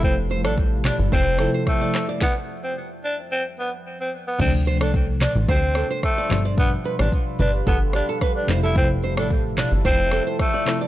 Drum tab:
CC |----------------|----------------|x---------------|----------------|
SH |x-xxx-xxx-xxx-xx|----------------|x-xxx-xxx-xxx-xx|x-xxx-xxx-xxx-xx|
CP |------x-------x-|----------------|------x-------x-|--------------x-|
SD |---r--r---r-r-r-|o---------------|---r--r---r-r-r-|---r------r-r---|
T2 |------o---------|----------------|------o---------|------o---------|
BD |o---o---o---o---|o---------------|o---o---o---o---|o---o---o---o---|

CC |----------------|
SH |x-xxx-xxx-xxx-xx|
CP |------x-------x-|
SD |---r--r---r-r-r-|
T2 |------o---------|
BD |o---o---o---o---|